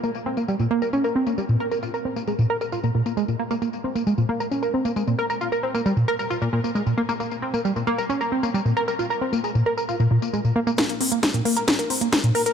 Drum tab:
HH |----------------|----------------|----------------|----------------|
TB |xx-xxx-xxx-xxx-x|xx-xxx-xxx-xxx-x|xx-xxx-xxx-xxx-x|xx-xxx-xxx-xxx-x|
SD |----------------|----------------|----------------|----------------|
BD |----------------|----------------|----------------|----------------|

HH |----------------|----------------|xxoxxxoxxxoxxxox|
TB |xx-xxx-xxx-xxx-x|xx-xxx-xxx-xxx-x|----------------|
SD |----------------|----------------|o---o---o---o---|
BD |----------------|----------------|o---o---o---o---|